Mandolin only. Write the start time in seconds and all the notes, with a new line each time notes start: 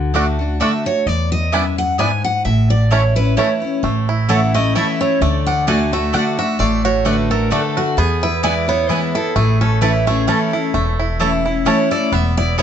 0.14 A3 F#4 D5 F#5
0.60 A3 F#4 D5 F#5
1.52 B3 E4 D5 G#5
1.98 B3 E4 D5 G#5
2.91 A3 E4 C#5 A5
3.37 A3 E4 C#5 A5
4.29 A3 E4 C#5 A5
4.75 A3 E4 C#5 A5
5.67 A3 F#4 D5 F#5
6.13 A3 F#4 D5 F#5
7.05 A3 F#4 D5 F#5
7.51 A3 F#4 D5 F#5
8.43 B3 E4 B4 G#5
8.89 B3 E4 B4 G#5
9.81 A3 E4 C#5 A5
10.27 A3 E4 C#5 A5
11.20 A3 E4 C#5 A5
11.66 A3 E4 C#5 A5
12.58 B3 E4 B4 G#5